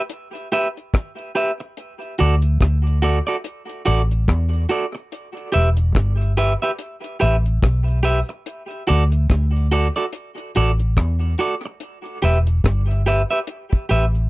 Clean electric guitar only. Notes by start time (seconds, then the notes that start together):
0.52 G4 B4 E5
1.35 G4 B4 E5
1.60 muted clean electric guitar stroke
2.19 F#4 A4 D5
3.02 F#4 A4 D5
3.27 F#4 A4 D5
3.85 F#4 A4 D5
4.69 F#4 A4 D5
4.95 muted clean electric guitar stroke
5.52 G4 B4 E5
6.37 G4 B4 E5
6.62 G4 B4 E5
7.20 G4 B4 E5
8.03 G4 B4 E5
8.29 muted clean electric guitar stroke
8.87 F#4 A4 D5
9.72 F#4 A4 D5
9.96 F#4 A4 D5
10.56 F#4 A4 D5
11.39 F#4 A4 D5
11.66 muted clean electric guitar stroke
12.22 G4 B4 E5
13.06 G4 B4 E5
13.31 G4 B4 E5
13.89 G4 B4 E5